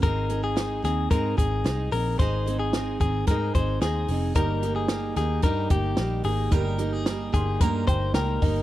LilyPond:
<<
  \new Staff \with { instrumentName = "Upright piano" } { \time 4/4 \key aes \major \tempo 4 = 111 << { r1 | r1 | r1 | r4. c'''8 bes''8 g''8 g''8 ees''8 | } \\ { r1 | r1 | <ees' g' bes'>1 | <ees' g' bes'>1 | } >> }
  \new Staff \with { instrumentName = "Clean electric guitar" } { \time 4/4 \key aes \major bes'8. aes'8. aes'8 bes'8 aes'4 bes'8 | c''8. aes'8. aes'8 bes'8 c''8 aes'4 | bes'8. aes'8. aes'8 bes'8 g'4 aes'8 | bes'8. aes'8. aes'8 bes'8 c''8 bes'4 | }
  \new Staff \with { instrumentName = "Steel-string acoustic guitar" } { \time 4/4 \key aes \major <aes c' ees' aes'>8 <c' ees' aes'>8 <aes c' ees' aes'>8 <c' ees' aes'>8 <aes c' ees' aes'>8 <c' ees' aes'>8 <aes c' ees' aes'>8 <c' ees' aes'>8 | <aes c' ees' aes'>8 <c' ees' aes'>8 <aes c' ees' aes'>8 <c' ees' aes'>8 <aes c' ees' aes'>8 <c' ees' aes'>8 <aes c' ees' aes'>8 <c' ees' aes'>8 | <g bes ees' g'>8 <bes ees' g'>8 <g bes ees' g'>8 <bes ees' g'>8 <g bes ees' g'>8 <bes ees' g'>8 <g bes ees' g'>8 <bes ees' g'>8 | <g bes ees' g'>8 <bes ees' g'>8 <g bes ees' g'>8 <bes ees' g'>8 <g bes ees' g'>8 <bes ees' g'>8 <g bes ees' g'>8 <bes ees' g'>8 | }
  \new Staff \with { instrumentName = "Picked electric bass" } { \clef bass \time 4/4 \key aes \major aes,,4. ees,8 aes,8 aes,,8 c,8 bes,,8 | aes,,4. aes,,8 aes,8 aes,,8 ees,8 f,,8 | g,,4. ees,8 g,8 g,,8 bes,,8 aes,,8 | g,,4. g,,8 g,8 g,,8 des,8 g,,8 | }
  \new DrumStaff \with { instrumentName = "Drums" } \drummode { \time 4/4 <hh bd>8 hh8 <hh sn>8 <hh sn>8 <hh bd>8 <hh bd>8 <hh sn>8 hho8 | <hh bd>8 hh8 <hh sn>8 <hh bd>8 <hh bd>8 <hh bd>8 <hh sn>8 hho8 | <hh bd>8 hh8 <hh sn>8 <hh sn>8 <hh bd>8 <hh bd>8 <hh sn>8 hho8 | <hh bd>8 hh8 <hh sn>8 <hh bd>8 <hh bd>8 <hh bd>8 <hh sn>8 <hho bd>8 | }
>>